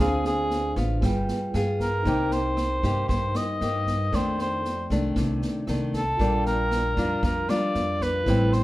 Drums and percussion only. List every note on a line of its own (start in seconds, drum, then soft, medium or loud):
0.24 snare soft
0.50 snare soft
0.76 kick soft
0.76 snare soft
1.02 kick medium
1.02 cross-stick medium
1.02 snare soft
1.28 snare soft
1.54 cross-stick medium
1.54 snare soft
1.80 kick soft
1.80 snare soft
2.05 kick soft
2.05 snare soft
2.31 snare soft
2.57 cross-stick medium
2.57 snare soft
2.83 kick soft
2.83 snare soft
3.09 kick medium
3.09 snare soft
3.35 cross-stick medium
3.35 snare soft
3.61 snare soft
3.87 kick soft
3.87 snare soft
4.13 kick soft
4.13 cross-stick soft
4.13 snare soft
4.39 snare soft
4.64 snare soft
4.90 kick soft
4.90 snare soft
5.16 kick medium
5.16 cross-stick medium
5.16 snare soft
5.42 snare soft
5.67 cross-stick soft
5.67 snare soft
5.93 kick soft
5.93 snare soft
6.19 kick medium
6.19 snare soft
6.46 snare soft
6.71 cross-stick medium
6.71 snare soft
6.97 kick soft
6.97 snare soft
7.23 kick medium
7.23 snare soft
7.49 cross-stick medium
7.49 snare soft
7.75 snare soft
8.01 kick soft
8.01 snare soft
8.26 kick soft
8.26 cross-stick soft
8.26 snare soft
8.52 snare soft